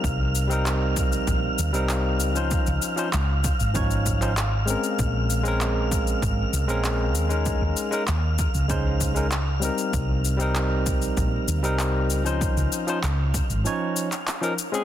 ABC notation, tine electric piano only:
X:1
M:4/4
L:1/16
Q:1/4=97
K:Dblyd
V:1 name="Tine electric piano"
[G,CEB]3 [G,CEB]8 [G,CEB]4 [F,DEc]- | [F,DEc]3 [F,DEc] z4 [F,DEd]3 [F,DEc] z2 [A,CDB]2- | [A,CDB]3 [A,CDB]8 [A,CDB]4 [A,DEB]- | [A,DEB]3 [A,DEB] z4 [A,DEc]3 [A,DEB] z2 [G,CEB]2- |
[G,CEB]3 [G,CEB]8 [G,CEB]4 [F,DEc]- | [F,DEc]3 [F,DEc] z4 [F,DEd]3 z2 [F,DEB] z [A,CDA] |]